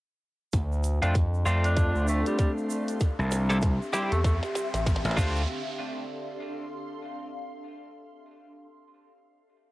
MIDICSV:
0, 0, Header, 1, 9, 480
1, 0, Start_track
1, 0, Key_signature, -1, "minor"
1, 0, Tempo, 618557
1, 414, Time_signature, 4, 2, 24, 8
1, 7540, End_track
2, 0, Start_track
2, 0, Title_t, "Ambient pad"
2, 0, Program_c, 0, 92
2, 414, Note_on_c, 0, 65, 77
2, 415, Note_on_c, 0, 84, 91
2, 416, Note_on_c, 0, 74, 73
2, 2315, Note_off_c, 0, 65, 0
2, 2315, Note_off_c, 0, 84, 0
2, 2316, Note_off_c, 0, 74, 0
2, 2330, Note_on_c, 0, 84, 89
2, 2331, Note_on_c, 0, 67, 80
2, 2331, Note_on_c, 0, 76, 77
2, 3995, Note_off_c, 0, 67, 0
2, 3995, Note_off_c, 0, 84, 0
2, 3996, Note_off_c, 0, 76, 0
2, 7540, End_track
3, 0, Start_track
3, 0, Title_t, "Ambient pad"
3, 0, Program_c, 1, 92
3, 412, Note_on_c, 1, 62, 83
3, 452, Note_on_c, 1, 69, 89
3, 633, Note_on_c, 1, 84, 80
3, 936, Note_on_c, 1, 77, 72
3, 2333, Note_on_c, 1, 60, 83
3, 2334, Note_off_c, 1, 77, 0
3, 2469, Note_on_c, 1, 67, 95
3, 2481, Note_on_c, 1, 76, 69
3, 3110, Note_off_c, 1, 62, 0
3, 3110, Note_off_c, 1, 69, 0
3, 4011, Note_off_c, 1, 67, 0
3, 4013, Note_off_c, 1, 60, 0
3, 4014, Note_off_c, 1, 76, 0
3, 4014, Note_off_c, 1, 84, 0
3, 4017, Note_on_c, 1, 62, 82
3, 4098, Note_on_c, 1, 69, 81
3, 4419, Note_on_c, 1, 77, 77
3, 4479, Note_on_c, 1, 84, 81
3, 5901, Note_off_c, 1, 69, 0
3, 5904, Note_off_c, 1, 62, 0
3, 6144, Note_off_c, 1, 77, 0
3, 6145, Note_off_c, 1, 84, 0
3, 7540, End_track
4, 0, Start_track
4, 0, Title_t, "Clean electric guitar"
4, 0, Program_c, 2, 27
4, 793, Note_on_c, 2, 65, 98
4, 797, Note_on_c, 2, 62, 81
4, 800, Note_on_c, 2, 60, 74
4, 804, Note_on_c, 2, 57, 80
4, 888, Note_off_c, 2, 57, 0
4, 888, Note_off_c, 2, 60, 0
4, 888, Note_off_c, 2, 65, 0
4, 889, Note_off_c, 2, 62, 0
4, 1130, Note_on_c, 2, 65, 88
4, 1134, Note_on_c, 2, 60, 66
4, 1138, Note_on_c, 2, 62, 69
4, 1141, Note_on_c, 2, 57, 75
4, 2322, Note_off_c, 2, 57, 0
4, 2322, Note_off_c, 2, 60, 0
4, 2322, Note_off_c, 2, 62, 0
4, 2322, Note_off_c, 2, 65, 0
4, 2714, Note_on_c, 2, 69, 113
4, 2716, Note_on_c, 2, 64, 89
4, 2719, Note_on_c, 2, 60, 81
4, 2721, Note_on_c, 2, 55, 91
4, 2774, Note_off_c, 2, 55, 0
4, 2774, Note_off_c, 2, 60, 0
4, 2774, Note_off_c, 2, 64, 0
4, 2774, Note_off_c, 2, 69, 0
4, 3050, Note_on_c, 2, 67, 86
4, 3051, Note_on_c, 2, 64, 66
4, 3056, Note_on_c, 2, 60, 73
4, 3060, Note_on_c, 2, 55, 69
4, 3189, Note_off_c, 2, 55, 0
4, 3189, Note_off_c, 2, 60, 0
4, 3189, Note_off_c, 2, 64, 0
4, 3189, Note_off_c, 2, 67, 0
4, 4010, Note_on_c, 2, 65, 104
4, 4013, Note_on_c, 2, 62, 74
4, 4016, Note_on_c, 2, 60, 80
4, 4020, Note_on_c, 2, 57, 85
4, 4200, Note_off_c, 2, 57, 0
4, 4200, Note_off_c, 2, 60, 0
4, 4200, Note_off_c, 2, 62, 0
4, 4200, Note_off_c, 2, 65, 0
4, 7540, End_track
5, 0, Start_track
5, 0, Title_t, "Tenor saxophone"
5, 0, Program_c, 3, 66
5, 1278, Note_on_c, 3, 62, 92
5, 1595, Note_off_c, 3, 62, 0
5, 1618, Note_on_c, 3, 57, 89
5, 1730, Note_off_c, 3, 57, 0
5, 1760, Note_on_c, 3, 55, 85
5, 1820, Note_off_c, 3, 55, 0
5, 1856, Note_on_c, 3, 55, 71
5, 1947, Note_off_c, 3, 55, 0
5, 3197, Note_on_c, 3, 57, 89
5, 3259, Note_off_c, 3, 57, 0
5, 3298, Note_on_c, 3, 57, 81
5, 3388, Note_off_c, 3, 57, 0
5, 7540, End_track
6, 0, Start_track
6, 0, Title_t, "Analog synth bass"
6, 0, Program_c, 4, 38
6, 413, Note_on_c, 4, 38, 91
6, 774, Note_off_c, 4, 38, 0
6, 798, Note_on_c, 4, 41, 90
6, 1118, Note_off_c, 4, 41, 0
6, 1134, Note_on_c, 4, 41, 96
6, 1494, Note_off_c, 4, 41, 0
6, 1515, Note_on_c, 4, 38, 87
6, 1733, Note_off_c, 4, 38, 0
6, 3199, Note_on_c, 4, 40, 93
6, 3415, Note_off_c, 4, 40, 0
6, 3678, Note_on_c, 4, 33, 93
6, 3894, Note_off_c, 4, 33, 0
6, 4015, Note_on_c, 4, 38, 99
6, 4237, Note_off_c, 4, 38, 0
6, 7540, End_track
7, 0, Start_track
7, 0, Title_t, "Slap bass"
7, 0, Program_c, 5, 36
7, 2475, Note_on_c, 5, 36, 98
7, 2933, Note_off_c, 5, 36, 0
7, 3915, Note_on_c, 5, 33, 92
7, 3997, Note_off_c, 5, 33, 0
7, 7540, End_track
8, 0, Start_track
8, 0, Title_t, "Riser"
8, 0, Program_c, 6, 103
8, 413, Note_on_c, 6, 60, 75
8, 4253, Note_off_c, 6, 60, 0
8, 7540, End_track
9, 0, Start_track
9, 0, Title_t, "Drums"
9, 412, Note_on_c, 9, 82, 51
9, 413, Note_on_c, 9, 38, 47
9, 413, Note_on_c, 9, 42, 64
9, 414, Note_on_c, 9, 36, 86
9, 489, Note_off_c, 9, 82, 0
9, 491, Note_off_c, 9, 36, 0
9, 491, Note_off_c, 9, 38, 0
9, 491, Note_off_c, 9, 42, 0
9, 560, Note_on_c, 9, 82, 26
9, 638, Note_off_c, 9, 82, 0
9, 649, Note_on_c, 9, 82, 93
9, 653, Note_on_c, 9, 42, 36
9, 727, Note_off_c, 9, 82, 0
9, 730, Note_off_c, 9, 42, 0
9, 796, Note_on_c, 9, 42, 53
9, 798, Note_on_c, 9, 82, 39
9, 874, Note_off_c, 9, 42, 0
9, 876, Note_off_c, 9, 82, 0
9, 891, Note_on_c, 9, 82, 49
9, 893, Note_on_c, 9, 36, 94
9, 894, Note_on_c, 9, 38, 50
9, 894, Note_on_c, 9, 42, 67
9, 968, Note_off_c, 9, 82, 0
9, 971, Note_off_c, 9, 36, 0
9, 971, Note_off_c, 9, 38, 0
9, 971, Note_off_c, 9, 42, 0
9, 1040, Note_on_c, 9, 82, 24
9, 1118, Note_off_c, 9, 82, 0
9, 1132, Note_on_c, 9, 82, 83
9, 1210, Note_off_c, 9, 82, 0
9, 1275, Note_on_c, 9, 42, 50
9, 1280, Note_on_c, 9, 82, 36
9, 1353, Note_off_c, 9, 42, 0
9, 1358, Note_off_c, 9, 82, 0
9, 1371, Note_on_c, 9, 38, 55
9, 1371, Note_on_c, 9, 42, 67
9, 1373, Note_on_c, 9, 36, 98
9, 1375, Note_on_c, 9, 82, 51
9, 1448, Note_off_c, 9, 38, 0
9, 1448, Note_off_c, 9, 42, 0
9, 1450, Note_off_c, 9, 36, 0
9, 1453, Note_off_c, 9, 82, 0
9, 1517, Note_on_c, 9, 82, 25
9, 1595, Note_off_c, 9, 82, 0
9, 1612, Note_on_c, 9, 82, 97
9, 1690, Note_off_c, 9, 82, 0
9, 1753, Note_on_c, 9, 82, 39
9, 1756, Note_on_c, 9, 42, 54
9, 1831, Note_off_c, 9, 82, 0
9, 1834, Note_off_c, 9, 42, 0
9, 1852, Note_on_c, 9, 38, 68
9, 1852, Note_on_c, 9, 42, 66
9, 1852, Note_on_c, 9, 82, 50
9, 1853, Note_on_c, 9, 36, 98
9, 1930, Note_off_c, 9, 38, 0
9, 1930, Note_off_c, 9, 42, 0
9, 1930, Note_off_c, 9, 82, 0
9, 1931, Note_off_c, 9, 36, 0
9, 1999, Note_on_c, 9, 82, 26
9, 2077, Note_off_c, 9, 82, 0
9, 2095, Note_on_c, 9, 82, 91
9, 2172, Note_off_c, 9, 82, 0
9, 2237, Note_on_c, 9, 42, 51
9, 2238, Note_on_c, 9, 82, 43
9, 2314, Note_off_c, 9, 42, 0
9, 2315, Note_off_c, 9, 82, 0
9, 2329, Note_on_c, 9, 82, 57
9, 2333, Note_on_c, 9, 36, 93
9, 2334, Note_on_c, 9, 38, 75
9, 2334, Note_on_c, 9, 42, 67
9, 2407, Note_off_c, 9, 82, 0
9, 2410, Note_off_c, 9, 36, 0
9, 2412, Note_off_c, 9, 38, 0
9, 2412, Note_off_c, 9, 42, 0
9, 2480, Note_on_c, 9, 82, 25
9, 2557, Note_off_c, 9, 82, 0
9, 2571, Note_on_c, 9, 82, 104
9, 2575, Note_on_c, 9, 38, 80
9, 2575, Note_on_c, 9, 42, 38
9, 2648, Note_off_c, 9, 82, 0
9, 2652, Note_off_c, 9, 38, 0
9, 2652, Note_off_c, 9, 42, 0
9, 2718, Note_on_c, 9, 42, 55
9, 2720, Note_on_c, 9, 82, 44
9, 2795, Note_off_c, 9, 42, 0
9, 2797, Note_off_c, 9, 82, 0
9, 2807, Note_on_c, 9, 82, 55
9, 2813, Note_on_c, 9, 36, 99
9, 2815, Note_on_c, 9, 38, 76
9, 2815, Note_on_c, 9, 42, 68
9, 2884, Note_off_c, 9, 82, 0
9, 2891, Note_off_c, 9, 36, 0
9, 2892, Note_off_c, 9, 38, 0
9, 2892, Note_off_c, 9, 42, 0
9, 2966, Note_on_c, 9, 82, 29
9, 3043, Note_off_c, 9, 82, 0
9, 3052, Note_on_c, 9, 82, 99
9, 3053, Note_on_c, 9, 38, 87
9, 3129, Note_off_c, 9, 82, 0
9, 3131, Note_off_c, 9, 38, 0
9, 3196, Note_on_c, 9, 82, 36
9, 3197, Note_on_c, 9, 42, 52
9, 3274, Note_off_c, 9, 82, 0
9, 3275, Note_off_c, 9, 42, 0
9, 3293, Note_on_c, 9, 36, 104
9, 3294, Note_on_c, 9, 38, 93
9, 3294, Note_on_c, 9, 42, 66
9, 3304, Note_on_c, 9, 82, 57
9, 3370, Note_off_c, 9, 36, 0
9, 3372, Note_off_c, 9, 38, 0
9, 3372, Note_off_c, 9, 42, 0
9, 3382, Note_off_c, 9, 82, 0
9, 3436, Note_on_c, 9, 38, 83
9, 3445, Note_on_c, 9, 82, 27
9, 3513, Note_off_c, 9, 38, 0
9, 3522, Note_off_c, 9, 82, 0
9, 3533, Note_on_c, 9, 38, 95
9, 3538, Note_on_c, 9, 82, 100
9, 3610, Note_off_c, 9, 38, 0
9, 3615, Note_off_c, 9, 82, 0
9, 3677, Note_on_c, 9, 38, 85
9, 3677, Note_on_c, 9, 42, 57
9, 3684, Note_on_c, 9, 82, 45
9, 3755, Note_off_c, 9, 38, 0
9, 3755, Note_off_c, 9, 42, 0
9, 3762, Note_off_c, 9, 82, 0
9, 3774, Note_on_c, 9, 36, 102
9, 3776, Note_on_c, 9, 38, 105
9, 3776, Note_on_c, 9, 42, 68
9, 3781, Note_on_c, 9, 82, 49
9, 3848, Note_off_c, 9, 38, 0
9, 3848, Note_on_c, 9, 38, 91
9, 3851, Note_off_c, 9, 36, 0
9, 3854, Note_off_c, 9, 42, 0
9, 3858, Note_off_c, 9, 82, 0
9, 3917, Note_on_c, 9, 82, 27
9, 3919, Note_off_c, 9, 38, 0
9, 3919, Note_on_c, 9, 38, 94
9, 3966, Note_off_c, 9, 38, 0
9, 3966, Note_on_c, 9, 38, 97
9, 3994, Note_off_c, 9, 82, 0
9, 4014, Note_on_c, 9, 36, 120
9, 4016, Note_on_c, 9, 49, 91
9, 4020, Note_on_c, 9, 82, 86
9, 4044, Note_off_c, 9, 38, 0
9, 4092, Note_off_c, 9, 36, 0
9, 4094, Note_off_c, 9, 49, 0
9, 4098, Note_off_c, 9, 82, 0
9, 4158, Note_on_c, 9, 82, 42
9, 4236, Note_off_c, 9, 82, 0
9, 7540, End_track
0, 0, End_of_file